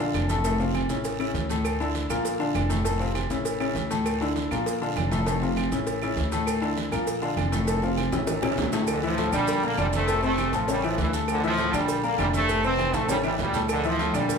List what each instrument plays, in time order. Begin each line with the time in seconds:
Already playing: upright bass A#1
0.00 upright piano D3 D4 F4, high conga, low agogo
0.14 upright bass F1, cowbell, high conga, low timbale, low agogo, short guiro, claves, maracas
0.29 upright piano A2 A3 A4, cowbell, high conga, short guiro, maracas
0.44 upright piano A2 A3 A4, cowbell, high conga, low agogo, long guiro, maracas
0.60 upright piano C3 C4 F4, maracas
0.74 cowbell, high conga, low timbale, low agogo, short guiro, claves, maracas
0.89 upright bass A1, upright piano C#3 C#4 E4, cowbell, short guiro, maracas
1.04 cowbell, high conga, low agogo, long guiro, maracas
1.19 upright piano C#3 C#4 E4, high conga, low agogo, claves, maracas
1.34 upright bass D2, cowbell, high conga, low timbale, short guiro, maracas
1.49 upright piano A2 A3 A4, high conga, short guiro, maracas
1.65 cowbell, high conga, low agogo, long guiro, claves, maracas
1.80 upright piano D3 D4 E4, low agogo, maracas
1.95 cowbell, high conga, low timbale, short guiro, maracas
2.10 upright bass A#1, upright piano A#2 A#3 A#4, high conga, low conga, low agogo, short guiro, claves, maracas
2.25 cowbell, high conga, long guiro, maracas
2.39 upright piano D3 D4 F4, high conga, low agogo, maracas
2.55 upright bass F1, cowbell, high conga, low timbale, low agogo, short guiro, claves, maracas
2.69 upright piano A2 A3 A4, cowbell, high conga, short guiro, maracas
2.84 upright piano A2 A3 A4, cowbell, high conga, low agogo, long guiro, maracas
3.00 upright piano C3 C4 F4, maracas
3.15 cowbell, high conga, low timbale, low agogo, short guiro, claves, maracas
3.30 upright bass A1, upright piano C#3 C#4 E4, cowbell, short guiro, maracas
3.45 cowbell, high conga, low agogo, long guiro, maracas
3.60 upright piano C#3 C#4 E4, high conga, low agogo, claves, maracas
3.75 upright bass D2, cowbell, high conga, low timbale, short guiro, maracas
3.90 upright piano A2 A3 A4, high conga, short guiro, maracas
4.05 cowbell, high conga, low agogo, long guiro, claves, maracas
4.21 upright piano D3 D4 E4, low agogo, maracas
4.36 cowbell, high conga, low timbale, short guiro, maracas
4.51 upright bass A#1, upright piano A#2 A#3 A#4, high conga, low conga, low agogo, short guiro, claves, maracas
4.66 cowbell, high conga, long guiro, maracas
4.81 upright piano D3 D4 F4, high conga, low agogo, maracas
4.96 upright bass F1, cowbell, high conga, low timbale, low agogo, short guiro, claves, maracas
5.11 upright piano A2 A3 A4, cowbell, high conga, short guiro, maracas
5.26 upright piano A2 A3 A4, cowbell, low agogo, long guiro, maracas
5.42 upright piano C3 C4 F4, maracas
5.57 cowbell, high conga, low timbale, low agogo, short guiro, claves, maracas
5.71 upright bass A1, upright piano C#3 C#4 E4, cowbell, short guiro, maracas
5.87 cowbell, high conga, low agogo, long guiro, maracas
6.02 upright piano C#3 C#4 E4, high conga, low agogo, claves, maracas
6.16 upright bass D2, cowbell, high conga, low timbale, short guiro, maracas
6.32 upright piano A2 A3 A4, high conga, short guiro, maracas
6.47 cowbell, low agogo, long guiro, claves, maracas
6.62 upright piano D3 D4 E4, low agogo, maracas
6.77 cowbell, high conga, low timbale, short guiro, maracas
6.91 upright bass A#1, upright piano A#2 A#3 A#4, high conga, low conga, low agogo, short guiro, claves, maracas
7.07 cowbell, high conga, long guiro, maracas
7.22 upright piano D3 D4 F4, high conga, low agogo, maracas
7.37 upright bass F1, cowbell, high conga, low timbale, low agogo, short guiro, claves, maracas
7.52 upright piano A2 A3 A4, cowbell, high conga, short guiro, maracas
7.67 upright piano A2 A3 A4, cowbell, low agogo, long guiro, maracas
7.83 upright piano C3 C4 F4, maracas
7.97 cowbell, high conga, low timbale, low agogo, short guiro, claves, maracas
8.12 upright bass A1, upright piano C#3 C#4 E4, cowbell, high bongo, high conga, short guiro, maracas
8.27 cowbell, high bongo, high conga, low agogo, long guiro, maracas
8.42 upright piano C#3 C#4 E4, high bongo, low conga, high timbale, low agogo, claves, maracas
8.52 high timbale
8.57 upright bass D2, cowbell, low bongo, low conga, short guiro, maracas
8.62 low timbale
8.72 upright piano A2 A3 A4, low bongo, low conga, low timbale, short guiro, maracas
8.87 trombone section F2 D3, cowbell, high conga, low agogo, long guiro, claves, maracas
9.02 trombone section A2 F3, upright piano E3 E4 E5, low agogo, maracas
9.17 upright piano A2 A3 A4, cowbell, high conga, low timbale, short guiro, maracas
9.32 upright bass A#1, trombone section A#2 G3, upright piano D3 D4 D5, high conga, low conga, low agogo, short guiro, claves, maracas
9.48 cowbell, high conga, low conga, long guiro, maracas
9.63 trombone section D3 A#3, upright piano A#3 A#4 A#5, high conga, low agogo, maracas
9.77 upright bass F1, trombone section A#2 G3, upright piano D3 D4 D5, cowbell, high conga, low timbale, low agogo, short guiro, claves, maracas
9.93 trombone section C3 A3, cowbell, high conga, short guiro, maracas
10.08 upright piano A2 A3 A4, cowbell, high conga, low agogo, long guiro, maracas
10.23 upright piano C3 C4 C5, trombone section C3 A3, high conga, maracas
10.38 cowbell, high conga, low timbale, low agogo, short guiro, claves, maracas
10.52 upright bass A1, trombone section A2 F3, upright piano A3 A4 A5, cowbell, short guiro, maracas
10.68 upright piano C#3 C#4 C#5, trombone section C#3 G3, cowbell, high conga, low agogo, long guiro, maracas
10.83 trombone section A2 F3, upright piano E3 E4 E5, low agogo, claves, maracas
10.98 upright bass D2, trombone section G2 E3, cowbell, high conga, low timbale, short guiro, maracas
11.13 upright piano A3 A4 A5, high conga, short guiro, maracas
11.28 trombone section F2 D3, cowbell, high conga, low agogo, long guiro, claves, maracas
11.43 trombone section A2 F3, upright piano E3 E4 E5, low agogo, maracas
11.58 upright piano A2 A3 A4, cowbell, high conga, low timbale, short guiro, maracas
11.73 upright bass A#1, trombone section A#2 G3, upright piano D3 D4 D5, high conga, low conga, low agogo, short guiro, claves, maracas
11.88 cowbell, long guiro, maracas
12.04 trombone section D3 A#3, upright piano A#3 A#4 A#5, high conga, low agogo, maracas
12.18 upright bass F1, trombone section A#2 G3, upright piano D3 D4 D5, cowbell, high conga, low timbale, low agogo, short guiro, claves, maracas
12.33 trombone section C3 A3, cowbell, high conga, short guiro, maracas
12.49 upright piano A2 A3 A4, cowbell, high conga, low agogo, long guiro, maracas
12.64 upright piano C3 C4 C5, trombone section E3 C4, maracas
12.78 cowbell, high conga, high timbale, low agogo, short guiro, claves, maracas
12.93 upright bass A1, trombone section C3 A3, upright piano A3 A4 A5, cowbell, high conga, high timbale, short guiro, maracas
13.09 upright piano C#3 C#4 C#5, trombone section C#3 G3, cowbell, high conga, high timbale, low agogo, long guiro, maracas
13.24 trombone section A#2 G3, upright piano E3 E4 E5, low timbale, low agogo, claves, maracas
13.39 upright bass D2, trombone section C#3 G3, cowbell, low conga, low timbale, short guiro, maracas
13.54 upright piano A3 A4 A5, low conga, low timbale, short guiro, maracas
13.69 trombone section F2 D3, cowbell, low agogo, long guiro, claves, maracas
13.84 trombone section A2 F3, upright piano E3 E4 E5, high conga, low agogo, maracas
13.99 upright piano A2 A3 A4, cowbell, high conga, low timbale, short guiro, maracas
14.13 upright bass A#1, trombone section A#2 G3, upright piano D3 D4 D5, high conga, low conga, low agogo, short guiro, claves, maracas
14.29 cowbell, high conga, low conga, long guiro, maracas